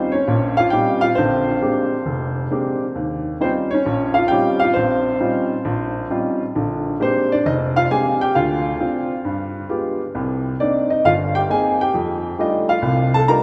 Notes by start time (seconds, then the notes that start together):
Already playing: G3 C4 C#4 D#4 F4
0.12 C#4 C#5
0.27 A#1 A#2
0.57 F4 F5
0.70 G3 C4 C#4 D#4 F4 G4 G5
1.01 F4 F5
1.15 A#1 D3 C4 C5
1.62 G#3 A#3 C4 D4 G4
2.06 F1
2.51 G#3 A#3 C4 D4 G4
2.95 D#2
3.40 G3 C4 C#4 D#4 F4 C5
3.71 C#4 C#5
3.86 A#1
4.14 F5
4.18 F4
4.28 G3 C4 C#4 D#4 F4 G5
4.32 G4
4.60 F5
4.64 F4
4.74 A#1 C5
4.79 C4
5.20 G3 C4 C#4 D#4 F4
5.65 A#1
6.10 G3 C4 C#4 D#4 F4
6.56 A#1 D3
7.00 G#3 A#3 C4 D4 G4 C5
7.32 D4 D5
7.46 F1 D#4 D#5
7.76 F4 F5
7.90 G#3 A#3 C4 D4 G4 G#4 G#5
8.21 G4 G5
8.35 D2 F4 F5
8.80 C4 D4 F4
9.25 G2
9.69 G#3 B3 F4 G4
10.15 C2 C3
10.60 A#3 C4 D4 D#4 D5
10.90 D#4 D#5
11.04 G1 F4 F5
11.35 G4 G5
11.49 A#3 C4 D#4 G#4 G#5
11.81 G4 G5
11.94 F2
12.38 G3 A3 D4 D#4 F4 D#5
12.69 F4 F5
12.82 C2 C3
13.14 A4 A5
13.28 G3 A3 D4 D#4 F4 A#4 A#5